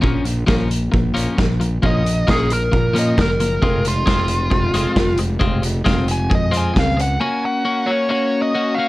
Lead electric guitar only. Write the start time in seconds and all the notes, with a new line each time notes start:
1.86 D#5
2.30 G#4
2.53 A#4
2.99 D#5
3.21 A#4
3.88 F4
6.12 G#5
6.35 D#5
6.57 G#5
6.80 F5
7.01 F#5
7.21 G#5
7.45 F#5
7.86 C#5
8.11 C#5
8.42 D#5
8.75 F5